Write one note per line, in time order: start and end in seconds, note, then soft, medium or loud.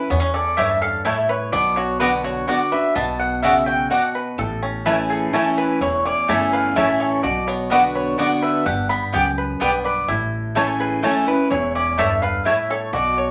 0.00 0.10 C#4 soft
0.00 0.53 B4 medium
0.10 0.57 E2 medium
0.10 0.98 E2 medium
0.10 0.20 B3 medium
0.10 0.33 C#5 medium
0.20 0.56 C#4 medium
0.34 0.81 A4 medium
0.34 0.57 D5 medium
0.57 1.03 G2 medium
0.57 0.67 A3 medium
0.57 1.25 C#4 medium
0.57 0.67 E4 loud
0.57 0.67 C#5 medium
0.57 0.81 E5 medium
0.57 0.68 A5 medium
0.82 1.48 A4 medium
0.82 1.05 F5 loud
1.05 1.51 A2 medium
1.05 1.14 A3 medium
1.05 1.53 E4 medium
1.05 1.15 E4 medium
1.05 1.15 C#5 medium
1.05 1.29 E5 medium
1.05 1.15 A5 medium
1.29 1.53 B4 medium
1.29 1.52 C#5 medium
1.52 2.41 B1 loud
1.52 2.43 B2 medium
1.52 2.00 B3 medium
1.52 1.76 D5 loud
1.76 2.23 F#4 medium
1.76 1.99 C#5 medium
2.00 2.46 D3 medium
2.00 2.09 B3 medium
2.00 2.67 B3 medium
2.00 2.46 B3 medium
2.00 2.46 D4 medium
2.00 2.10 F#4 medium
2.00 2.46 F#4 medium
2.00 2.24 B4 medium
2.00 2.10 D5 medium
2.00 2.10 F#5 loud
2.24 2.47 F#4 medium
2.24 2.47 C#5 medium
2.47 2.71 D3 medium
2.47 2.57 B3 medium
2.47 2.72 B3 medium
2.47 2.72 D4 medium
2.47 2.96 F#4 medium
2.47 2.57 F#4 medium
2.47 2.71 F#4 medium
2.47 2.57 D5 medium
2.47 2.72 D5 medium
2.47 2.58 F#5 medium
2.72 2.96 D4 soft
2.72 2.95 F#4 medium
2.72 2.96 B4 medium
2.72 2.95 E5 medium
2.95 3.83 B1 medium
2.95 3.86 B2 medium
2.95 3.42 B3 medium
2.95 3.19 A5 loud
3.20 3.42 F#5 medium
3.42 3.89 C#3 medium
3.42 3.52 B3 medium
3.42 4.10 B3 medium
3.42 3.52 F#4 medium
3.42 3.53 D5 medium
3.42 3.66 E5 medium
3.42 3.53 F#5 medium
3.66 3.90 F#4 medium
3.66 3.90 G5 loud
3.90 4.36 B2 medium
3.90 4.00 B3 medium
3.90 4.38 F#4 medium
3.90 4.00 F#4 medium
3.90 4.00 D5 medium
3.90 4.24 F#5 medium
3.90 4.00 F#5 medium
4.15 4.38 B4 medium
4.38 5.26 A1 medium
4.38 5.29 A2 medium
4.38 5.10 A4 medium
4.63 5.29 C#4 medium
4.86 5.31 E3 medium
4.86 4.95 A3 medium
4.86 5.31 A3 medium
4.86 5.31 C#4 medium
4.86 4.95 E4 medium
4.86 5.32 E4 medium
4.86 5.53 B4 medium
4.86 4.95 C#5 loud
4.86 4.95 A5 loud
5.10 5.33 G#4 medium
5.10 5.76 A4 medium
5.33 5.78 E3 medium
5.33 5.42 A3 medium
5.33 5.79 A3 medium
5.33 6.00 C#4 medium
5.33 5.79 C#4 medium
5.33 5.43 E4 medium
5.33 5.79 E4 loud
5.33 5.57 A4 medium
5.33 5.43 C#5 medium
5.33 5.43 A5 medium
5.58 6.24 B4 medium
5.58 5.80 B4 medium
5.81 6.10 E1 medium
5.81 6.72 E2 medium
5.81 6.48 E4 medium
5.81 6.05 C#5 medium
6.05 6.71 C#4 medium
6.05 6.28 D5 medium
6.28 6.69 G1 medium
6.28 6.74 E3 medium
6.28 6.37 A3 medium
6.28 6.74 A3 medium
6.28 6.74 C#4 medium
6.28 6.38 E4 medium
6.28 6.74 E4 medium
6.28 6.95 A4 medium
6.28 6.38 C#5 loud
6.28 6.52 E5 medium
6.28 6.38 A5 loud
6.53 7.19 B4 medium
6.53 6.76 F5 loud
6.75 7.17 A1 medium
6.75 7.21 E3 medium
6.75 6.85 A3 medium
6.75 7.22 A3 medium
6.75 7.22 C#4 medium
6.75 6.85 E4 medium
6.75 7.23 E4 medium
6.75 7.22 E4 medium
6.75 6.85 C#5 medium
6.75 6.99 E5 medium
6.75 6.86 A5 medium
7.00 7.24 A4 medium
7.00 7.23 C#5 medium
7.23 8.11 B1 loud
7.23 8.14 B2 medium
7.23 7.70 F#4 medium
7.23 7.47 D5 loud
7.47 8.14 B3 medium
7.47 7.70 C#5 medium
7.70 8.16 D3 medium
7.70 7.80 B3 medium
7.70 8.16 B3 medium
7.70 8.17 D4 medium
7.70 7.80 F#4 medium
7.70 8.38 F#4 medium
7.70 8.17 F#4 medium
7.70 7.94 B4 medium
7.70 7.80 D5 loud
7.70 7.80 F#5 loud
7.95 8.41 B4 medium
7.95 8.18 C#5 medium
8.18 8.64 D3 medium
8.18 8.27 B3 medium
8.18 8.66 B3 medium
8.18 8.64 B3 medium
8.18 8.64 D4 loud
8.18 8.27 F#4 medium
8.18 8.64 F#4 medium
8.18 8.28 D5 medium
8.18 8.42 D5 medium
8.18 8.28 F#5 loud
8.42 8.66 B4 medium
8.42 8.65 E5 medium
8.66 8.95 G1 medium
8.66 9.13 G2 medium
8.66 9.12 G4 medium
8.66 8.89 F#5 medium
8.89 9.56 B3 medium
8.89 9.04 B5 medium
9.12 9.54 C#2 medium
9.12 9.59 F#2 medium
9.12 9.22 B3 medium
9.12 9.22 G4 medium
9.12 9.80 G4 medium
9.12 9.23 D5 medium
9.12 9.23 G5 medium
9.38 9.84 B4 medium
9.60 10.01 B1 medium
9.60 10.06 G2 medium
9.60 9.69 B3 medium
9.60 10.09 B3 medium
9.60 9.70 G4 medium
9.60 9.84 B4 medium
9.60 9.70 D5 medium
9.60 9.70 G5 medium
9.84 10.09 B4 medium
9.84 10.07 D5 medium
10.08 10.96 A1 medium
10.08 10.99 A2 medium
10.08 11.48 E4 medium
10.55 11.01 E3 medium
10.55 10.65 A3 medium
10.55 11.01 A3 medium
10.55 11.02 C#4 medium
10.55 10.65 E4 medium
10.55 11.02 E4 medium
10.55 11.23 A4 medium
10.55 10.65 C#5 loud
10.55 10.65 A5 loud
10.80 11.03 G#4 medium
10.80 11.27 B4 medium
11.02 11.26 E3 medium
11.02 11.12 A3 medium
11.02 11.26 A3 medium
11.02 11.70 C#4 medium
11.02 11.27 C#4 medium
11.02 11.12 E4 medium
11.02 11.25 E4 medium
11.02 11.26 A4 medium
11.02 11.13 C#5 medium
11.02 11.13 A5 medium
11.26 11.50 C#4 medium
11.26 11.49 E4 medium
11.26 11.50 B4 medium
11.26 11.94 B4 medium
11.50 12.38 E1 medium
11.50 11.98 E2 medium
11.50 12.18 E4 medium
11.50 11.74 C#5 medium
11.75 12.41 C#4 medium
11.75 11.98 D5 medium
11.98 12.43 G2 medium
11.98 12.07 A3 medium
11.98 12.07 E4 medium
11.98 12.65 A4 medium
11.98 12.08 C#5 medium
11.98 12.22 E5 medium
11.98 12.08 A5 medium
12.22 12.89 B4 medium
12.22 12.45 F5 medium
12.45 12.91 A2 medium
12.45 12.54 A3 medium
12.45 12.55 E4 medium
12.45 12.93 E4 medium
12.45 12.55 C#5 medium
12.45 12.69 E5 medium
12.45 12.55 A5 medium
12.70 12.94 A4 medium
12.70 12.93 C#5 medium
12.93 13.31 B1 loud
12.93 13.31 B2 medium
12.93 13.31 F#4 medium
12.93 13.17 D5 medium
13.18 13.31 C#5 medium